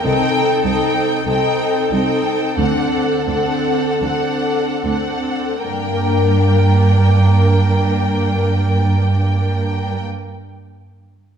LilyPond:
<<
  \new Staff \with { instrumentName = "Violin section" } { \time 4/4 \key g \minor \tempo 4 = 41 g''8 g''8 g''8 g''8 fis''8 fis''8 fis''8 fis''8 | g''1 | }
  \new Staff \with { instrumentName = "Violin section" } { \time 4/4 \key g \minor a'4 a'2. | bes'1 | }
  \new Staff \with { instrumentName = "Harp" } { \time 4/4 \key g \minor \tuplet 3/2 { <c g'>8 c'8 g'8 ees''8 c''8 g'8 d8 c'8 fis'8 d''4 fis'8 } | <g, g bes d' bes'>1 | }
  \new Staff \with { instrumentName = "Viola section" } { \time 4/4 \key g \minor <c' ees'>8 <c' ees'>8 <c' ees'>8 <c' ees'>8 <c' d'>8 <c' d'>8 <c' d'>8 <c' d'>8 | <bes d'>1 | }
  \new Staff \with { instrumentName = "Cello section" } { \clef bass \time 4/4 \key g \minor c,8 c,8 c,8 c,8 d,8 d,8 d,8 d,8 | g,1 | }
>>